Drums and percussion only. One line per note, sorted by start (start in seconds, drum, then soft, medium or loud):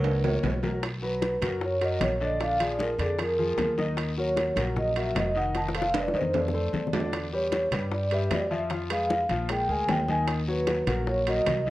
0.04 high conga soft
0.04 high timbale medium
0.04 long guiro medium
0.24 low bongo medium
0.24 high conga soft
0.24 low timbale medium
0.43 low bongo medium
0.43 high conga medium
0.43 low timbale loud
0.43 short guiro medium
0.63 low bongo medium
0.63 low timbale medium
0.63 short guiro medium
0.83 high bongo medium
0.83 high conga soft
0.83 high timbale medium
0.83 long guiro medium
1.03 high conga soft
1.22 high bongo medium
1.22 high conga medium
1.22 high timbale medium
1.22 short guiro medium
1.42 high conga soft
1.42 low conga medium
1.42 high timbale medium
1.42 short guiro medium
1.61 high bongo medium
1.61 high conga soft
1.61 long guiro medium
1.81 high conga soft
1.81 high timbale medium
2.01 high bongo medium
2.01 low bongo medium
2.01 high conga medium
2.01 high timbale medium
2.01 short guiro medium
2.21 short guiro medium
2.40 high bongo medium
2.40 high conga soft
2.40 high timbale medium
2.40 long guiro medium
2.60 high bongo soft
2.60 high conga soft
2.60 high timbale loud
2.79 high bongo medium
2.79 high conga medium
2.79 short guiro medium
2.99 high bongo soft
2.99 high conga soft
2.99 high timbale medium
2.99 short guiro medium
3.19 high bongo medium
3.19 high conga soft
3.19 high timbale medium
3.19 long guiro medium
3.39 high conga soft
3.58 high bongo medium
3.58 low bongo medium
3.58 high conga medium
3.58 high timbale medium
3.58 short guiro medium
3.78 high bongo soft
3.78 high conga medium
3.78 short guiro medium
3.97 high bongo medium
3.97 high conga soft
3.97 high timbale medium
3.97 long guiro medium
4.17 high conga soft
4.36 high bongo medium
4.36 high conga medium
4.36 high timbale medium
4.36 short guiro medium
4.56 high conga soft
4.56 low conga medium
4.56 high timbale medium
4.56 short guiro medium
4.76 high bongo medium
4.76 high conga soft
4.76 low conga medium
4.76 long guiro medium
4.96 high conga soft
4.96 high timbale medium
5.15 high bongo medium
5.15 low bongo medium
5.15 high conga medium
5.15 high timbale medium
5.15 low timbale medium
5.15 short guiro medium
5.35 short guiro medium
5.55 high bongo medium
5.55 high conga soft
5.55 high timbale medium
5.55 long guiro medium
5.69 high bongo medium
5.75 high conga soft
5.75 high timbale loud
5.82 high bongo medium
5.94 high conga medium
5.94 high timbale medium
5.94 short guiro medium
6.08 high bongo medium
6.14 high conga soft
6.14 short guiro medium
6.21 low bongo medium
6.34 low bongo loud
6.34 high conga soft
6.34 high timbale medium
6.34 long guiro medium
6.48 low bongo medium
6.54 high conga soft
6.73 low bongo medium
6.73 high conga medium
6.73 short guiro medium
6.87 low bongo medium
6.93 high conga medium
6.93 low timbale medium
6.93 short guiro medium
7.00 low bongo medium
7.13 high bongo medium
7.13 high conga soft
7.13 high timbale medium
7.13 long guiro medium
7.33 high conga soft
7.52 high bongo medium
7.52 high conga medium
7.52 high timbale medium
7.52 short guiro medium
7.72 high conga soft
7.72 low conga medium
7.72 high timbale loud
7.72 short guiro medium
7.92 high bongo medium
7.92 high conga soft
7.92 long guiro medium
8.11 high conga soft
8.11 high timbale medium
8.31 high bongo medium
8.31 low bongo medium
8.31 high conga medium
8.31 high timbale medium
8.31 low timbale medium
8.31 short guiro medium
8.51 short guiro medium
8.70 high bongo medium
8.70 high conga soft
8.70 high timbale medium
8.70 long guiro medium
8.90 high bongo soft
8.90 high conga soft
8.90 high timbale loud
9.10 high bongo medium
9.10 high conga medium
9.10 short guiro medium
9.29 high bongo soft
9.29 high conga soft
9.29 high timbale medium
9.29 short guiro medium
9.49 high bongo medium
9.49 high conga soft
9.49 high timbale loud
9.49 long guiro medium
9.69 high conga soft
9.89 high bongo medium
9.89 low bongo medium
9.89 high conga medium
9.89 high timbale medium
9.89 low timbale medium
9.89 short guiro medium
10.09 high bongo soft
10.09 high conga medium
10.09 short guiro medium
10.28 high bongo medium
10.28 high conga soft
10.28 high timbale medium
10.28 long guiro medium
10.48 high conga soft
10.67 high bongo medium
10.67 high conga medium
10.67 high timbale medium
10.67 short guiro medium
10.87 high conga soft
10.87 low conga medium
10.87 high timbale medium
10.87 short guiro medium
11.07 high bongo medium
11.07 high conga soft
11.07 long guiro medium
11.27 high conga soft
11.27 high timbale medium
11.47 high bongo medium
11.47 low bongo medium
11.47 high conga medium
11.47 high timbale loud
11.47 short guiro medium
11.66 short guiro medium